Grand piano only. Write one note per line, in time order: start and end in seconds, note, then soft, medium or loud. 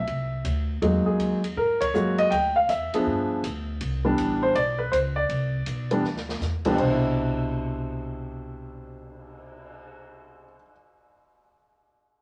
0.00 0.66 E5 medium
0.82 1.39 F#3 medium
0.82 1.39 G#3 soft
0.82 1.40 A#3 soft
0.82 1.39 D#4 medium
1.06 1.41 G#4 medium
1.57 1.82 A#4 medium
1.81 2.16 C#5 loud
1.94 2.32 F#3 medium
1.94 2.32 G#3 medium
1.94 2.32 A#3 medium
1.94 2.32 F#4 medium
2.19 2.32 D#5 medium
2.31 2.54 G5 medium
2.56 2.69 F5 medium
2.69 3.64 E5 medium
2.94 3.42 F3 medium
2.94 3.42 B3 medium
2.94 3.42 D4 medium
2.94 3.41 G#4 medium
4.05 4.53 E3 medium
4.05 4.53 G3 medium
4.05 4.53 B3 medium
4.05 4.53 D4 medium
4.43 4.56 C5 medium
4.55 4.78 D5 loud
4.79 4.92 B4 medium
4.92 4.97 C5 medium
5.16 6.37 D5 medium
5.91 6.03 E3 medium
5.91 6.03 G3 medium
5.91 6.03 B3 medium
5.91 6.03 D4 medium
6.65 6.77 C2 medium
6.65 10.45 C3 medium
6.65 6.77 E3 medium
6.65 6.77 G3 medium
6.65 6.78 B3 medium
6.65 6.78 D4 medium
6.74 10.54 B2 medium
6.79 10.62 D4 medium
6.79 10.55 C5 medium
6.91 10.71 E4 medium